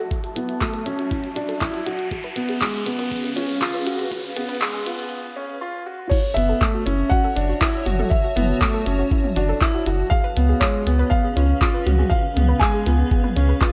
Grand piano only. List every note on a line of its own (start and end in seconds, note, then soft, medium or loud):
0.36 0.56 B3 medium
0.61 0.81 A3 medium
0.86 1.26 C#4 medium
1.36 1.56 D4 medium
1.61 1.81 E4 medium
1.86 2.06 F#4 medium
2.36 2.56 B3 medium
2.61 2.81 G#3 medium
2.86 3.26 B3 medium
3.36 3.56 C#4 medium
3.62 3.81 F4 medium
3.86 4.06 F#4 medium
4.36 4.56 B3 medium
4.61 4.81 G#3 medium
4.86 5.26 B3 medium
5.36 5.56 C#4 medium
5.61 5.81 F4 medium
5.86 6.06 F#4 medium
6.36 6.56 B3 medium
6.61 6.81 A3 medium
6.86 7.26 C#4 medium
7.36 7.56 D4 medium
7.61 7.81 E4 medium
7.86 8.06 F#4 medium
8.36 8.56 B3 medium
8.61 8.81 A3 medium
8.87 9.26 C#4 medium
9.36 9.56 D4 medium
9.62 9.81 E4 medium
9.86 10.06 F#4 medium
10.37 10.56 B3 medium
10.61 10.81 G#3 medium
10.87 11.26 B3 medium
11.36 11.56 C#4 medium
11.62 11.81 F4 medium
11.86 12.06 F#4 medium
12.36 12.56 B3 medium
12.61 12.81 G#3 medium
12.86 13.26 B3 medium
13.36 13.56 C#4 medium
13.61 13.72 F4 medium